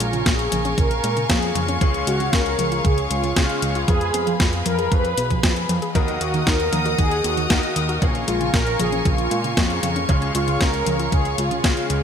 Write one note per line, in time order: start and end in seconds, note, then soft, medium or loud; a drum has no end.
0.00 0.23 A#1 loud
0.00 1.26 A#2 medium
0.00 0.11 G#3 medium
0.00 1.26 A#3 medium
0.00 1.26 C#4 medium
0.00 1.26 F4 medium
0.00 0.27 F4 medium
0.00 1.26 G#4 medium
0.00 1.77 A#4 medium
0.00 5.91 F5 medium
0.00 1.79 G#5 medium
0.00 3.84 C#6 medium
0.00 closed hi-hat loud
0.13 0.24 C#3 loud
0.13 closed hi-hat soft
0.26 0.49 A#1 loud
0.26 0.37 A#3 loud
0.26 0.79 G#4 loud
0.26 kick loud
0.26 snare loud
0.26 closed hi-hat medium
0.39 closed hi-hat soft
0.52 0.75 A#1 medium
0.52 0.63 C#3 medium
0.52 closed hi-hat loud
0.52 high tom medium
0.65 0.71 C#4 loud
0.65 closed hi-hat soft
0.78 1.01 A#1 loud
0.78 0.90 C#3 loud
0.78 1.31 A#4 loud
0.78 kick loud
0.78 closed hi-hat medium
0.91 closed hi-hat soft
1.04 1.27 A#2 loud
1.04 1.14 G#3 medium
1.04 closed hi-hat medium
1.17 1.27 C#3 loud
1.17 closed hi-hat soft
1.30 1.52 F2 loud
1.30 1.78 A#2 medium
1.30 1.78 A#3 medium
1.30 1.40 A#3 loud
1.30 1.78 C#4 medium
1.30 1.78 F4 medium
1.30 1.78 G#4 medium
1.30 1.66 G#4 medium
1.30 kick loud
1.30 snare loud
1.30 closed hi-hat medium
1.43 closed hi-hat soft
1.55 1.78 F2 medium
1.55 1.66 C#3 medium
1.55 closed hi-hat loud
1.55 high tom medium
1.68 1.75 C#4 loud
1.68 closed hi-hat soft
1.81 2.04 C#2 loud
1.81 3.33 C#3 medium
1.81 1.94 C#3 loud
1.81 3.33 G#3 medium
1.81 3.33 C#4 medium
1.81 3.33 F4 medium
1.81 3.33 G#4 loud
1.81 5.91 G#4 medium
1.81 3.86 C#5 medium
1.81 kick loud
1.81 closed hi-hat medium
1.94 closed hi-hat soft
2.07 2.30 C#2 medium
2.07 2.18 G#3 medium
2.07 2.34 F#4 loud
2.07 closed hi-hat loud
2.20 2.31 C#3 loud
2.20 closed hi-hat soft
2.33 2.56 C#2 loud
2.33 2.44 C#4 loud
2.33 2.81 A#4 loud
2.33 kick loud
2.33 snare loud
2.33 closed hi-hat medium
2.46 closed hi-hat soft
2.59 2.82 C#2 medium
2.59 2.70 C#3 medium
2.59 closed hi-hat medium
2.59 high tom medium
2.72 2.78 F4 loud
2.72 closed hi-hat soft
2.84 3.08 C#2 medium
2.84 2.97 C#3 loud
2.84 3.11 G#4 loud
2.84 kick loud
2.84 closed hi-hat medium
2.98 closed hi-hat soft
3.10 3.33 C#2 loud
3.10 3.21 G#3 medium
3.10 3.59 F4 medium
3.10 closed hi-hat loud
3.24 3.34 C#3 loud
3.24 closed hi-hat soft
3.36 3.48 C#2 medium
3.36 3.85 C#3 medium
3.36 3.85 G#3 medium
3.36 3.47 C#4 loud
3.36 3.85 C#4 medium
3.36 3.85 F4 medium
3.36 3.85 G#4 loud
3.36 kick loud
3.36 snare loud
3.36 closed hi-hat medium
3.49 closed hi-hat soft
3.62 3.85 C#2 medium
3.62 3.73 C#3 medium
3.62 closed hi-hat loud
3.75 3.82 F4 loud
3.75 closed hi-hat soft
3.88 4.11 F2 medium
3.88 4.00 F3 loud
3.88 5.40 G#3 medium
3.88 5.40 B3 medium
3.88 5.40 F4 medium
3.88 4.36 G#4 loud
3.88 5.40 G#4 medium
3.88 5.93 B4 medium
3.88 5.93 B5 medium
3.88 kick loud
3.88 closed hi-hat medium
4.01 closed hi-hat soft
4.14 4.37 F2 medium
4.14 4.25 B3 medium
4.14 closed hi-hat medium
4.27 4.38 F3 loud
4.27 closed hi-hat soft
4.40 4.63 F2 loud
4.40 4.51 F4 loud
4.40 kick loud
4.40 snare loud
4.40 closed hi-hat medium
4.53 closed hi-hat soft
4.66 4.89 F2 medium
4.66 4.77 F3 medium
4.66 4.92 A#4 loud
4.66 closed hi-hat medium
4.66 high tom medium
4.79 4.85 G#4 loud
4.79 closed hi-hat soft
4.92 5.15 F2 loud
4.92 5.04 F3 loud
4.92 5.65 B4 loud
4.92 kick loud
4.92 closed hi-hat medium
5.05 closed hi-hat soft
5.17 5.40 B1 medium
5.17 5.28 B3 medium
5.17 closed hi-hat medium
5.30 5.41 F3 loud
5.30 kick medium
5.30 closed hi-hat soft
5.43 5.66 F2 medium
5.43 5.54 F4 loud
5.43 kick loud
5.43 snare loud
5.43 closed hi-hat medium
5.56 closed hi-hat soft
5.69 5.81 F2 medium
5.69 5.80 F3 medium
5.69 closed hi-hat medium
5.69 high tom medium
5.82 5.89 G#4 loud
5.82 closed hi-hat soft
5.95 6.18 D#2 loud
5.95 6.07 D#3 loud
5.95 7.47 D#3 medium
5.95 7.47 A#3 medium
5.95 7.47 D#4 medium
5.95 7.47 F#4 medium
5.95 10.05 A#4 medium
5.95 7.47 A#4 loud
5.95 8.00 D#5 medium
5.95 8.00 F#5 medium
5.95 8.00 D#6 medium
5.95 kick loud
5.95 closed hi-hat medium
6.08 closed hi-hat soft
6.21 6.44 D#2 medium
6.21 6.32 A#3 medium
6.21 6.48 F#4 loud
6.21 closed hi-hat medium
6.34 6.45 D#3 loud
6.34 closed hi-hat soft
6.47 6.70 D#2 loud
6.47 6.58 D#4 loud
6.47 7.00 A#4 loud
6.47 kick loud
6.47 snare loud
6.47 closed hi-hat medium
6.60 closed hi-hat soft
6.73 6.96 D#2 loud
6.73 6.83 D#3 medium
6.73 closed hi-hat medium
6.73 high tom medium
6.85 6.92 F#4 loud
6.85 closed hi-hat soft
6.98 7.21 D#2 medium
6.98 7.11 D#3 loud
6.98 7.25 G#4 loud
6.98 kick loud
6.98 closed hi-hat medium
7.11 closed hi-hat soft
7.24 7.47 D#2 medium
7.24 7.35 A#3 medium
7.24 7.73 F#4 medium
7.24 closed hi-hat medium
7.37 7.48 D#3 loud
7.37 closed hi-hat soft
7.50 7.62 D#2 medium
7.50 7.99 D#3 medium
7.50 7.99 A#3 medium
7.50 7.61 D#4 loud
7.50 7.99 D#4 medium
7.50 7.99 F#4 medium
7.50 7.99 A#4 loud
7.50 kick loud
7.50 snare loud
7.50 closed hi-hat medium
7.63 closed hi-hat soft
7.76 7.99 D#2 medium
7.76 7.87 D#3 medium
7.76 closed hi-hat medium
7.89 7.95 F#4 loud
7.89 closed hi-hat soft
8.02 8.25 A#1 medium
8.02 9.54 A#2 medium
8.02 8.14 C#3 loud
8.02 9.54 A#3 medium
8.02 9.54 C#4 medium
8.02 9.54 F4 medium
8.02 9.54 G#4 medium
8.02 12.03 F5 medium
8.02 10.07 G#5 medium
8.02 12.03 C#6 medium
8.02 kick loud
8.02 closed hi-hat medium
8.15 closed hi-hat soft
8.28 8.51 A#1 loud
8.28 8.38 G#3 medium
8.28 8.54 F4 loud
8.28 closed hi-hat medium
8.41 8.51 C#3 loud
8.41 closed hi-hat soft
8.54 8.77 A#1 loud
8.54 8.64 A#3 loud
8.54 8.80 A#4 loud
8.54 kick loud
8.54 snare loud
8.54 closed hi-hat medium
8.67 closed hi-hat soft
8.79 9.02 A#1 medium
8.79 8.90 C#3 medium
8.79 9.06 G#4 loud
8.79 closed hi-hat medium
8.79 high tom medium
8.92 8.99 C#4 loud
8.92 closed hi-hat soft
9.05 9.28 A#1 loud
9.05 9.18 C#3 loud
9.05 9.79 F4 medium
9.05 kick loud
9.05 closed hi-hat medium
9.18 closed hi-hat soft
9.31 9.54 A#2 loud
9.31 9.42 G#3 medium
9.31 closed hi-hat medium
9.44 9.55 C#3 loud
9.44 closed hi-hat soft
9.57 9.80 F2 loud
9.57 10.06 A#2 medium
9.57 9.68 A#3 loud
9.57 10.06 A#3 medium
9.57 10.06 C#4 medium
9.57 10.06 F4 medium
9.57 10.06 G#4 medium
9.57 kick loud
9.57 snare loud
9.57 closed hi-hat medium
9.70 closed hi-hat soft
9.83 10.06 F2 medium
9.83 9.94 C#3 medium
9.83 closed hi-hat medium
9.83 high tom medium
9.96 10.02 C#4 loud
9.96 closed hi-hat soft
10.09 10.32 C#2 loud
10.09 10.21 C#3 loud
10.09 11.61 C#3 medium
10.09 11.61 G#3 medium
10.09 11.61 C#4 medium
10.09 11.61 F4 medium
10.09 11.61 G#4 loud
10.09 12.03 G#4 medium
10.09 12.03 C#5 medium
10.09 kick loud
10.09 closed hi-hat medium
10.22 closed hi-hat soft
10.35 10.58 C#2 medium
10.35 10.45 G#3 medium
10.35 10.61 F4 loud
10.35 closed hi-hat medium
10.48 10.58 C#3 loud
10.48 closed hi-hat soft
10.61 10.84 C#2 loud
10.61 10.71 C#4 loud
10.61 11.14 A#4 loud
10.61 kick loud
10.61 snare loud
10.61 closed hi-hat medium
10.74 closed hi-hat soft
10.86 11.09 C#2 medium
10.86 10.97 C#3 medium
10.86 closed hi-hat medium
10.86 high tom medium
10.99 11.06 F4 loud
10.99 closed hi-hat soft
11.12 11.35 C#2 medium
11.12 11.25 C#3 loud
11.12 11.36 G#4 loud
11.12 kick loud
11.12 closed hi-hat medium
11.25 closed hi-hat soft
11.38 11.61 C#2 medium
11.38 11.49 G#3 medium
11.38 11.86 F4 medium
11.38 closed hi-hat medium
11.51 11.62 C#3 loud
11.51 closed hi-hat soft
11.64 11.76 C#2 medium
11.64 12.03 C#3 medium
11.64 12.03 G#3 medium
11.64 12.03 C#4 medium
11.64 11.75 C#4 loud
11.64 12.03 F4 medium
11.64 12.03 G#4 loud
11.64 kick loud
11.64 snare loud
11.64 closed hi-hat medium
11.77 closed hi-hat soft
11.90 12.03 C#2 medium
11.90 12.01 C#3 medium
11.90 closed hi-hat medium